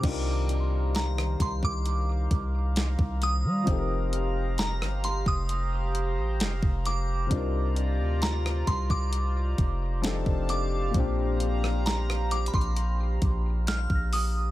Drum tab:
CC |x-----------------------------------------------|------------------------------------------------|------------------------------------------------|------------------------------------------------|
HH |x-----x-----x-----x-----x-----x-----x-----x-----|x-----x-----x-----x-----x-----x-----x-----x-----|x-----x-----x-----x-----x-----x-----x-----x-----|x-----x-----x-----x-x-x-x-----x-----x-----o-----|
SD |------------o--r--------------------o-----------|------------o--r--------------------o-----------|------------o--r--------------------o-----------|---------r--o--r--------------------o-----------|
BD |o-----------------o--o--------o--------o--------|o--------------------o-----------------o--------|o-----------------o--o--------o--------o--------|o--------------------o--------o--------o--------|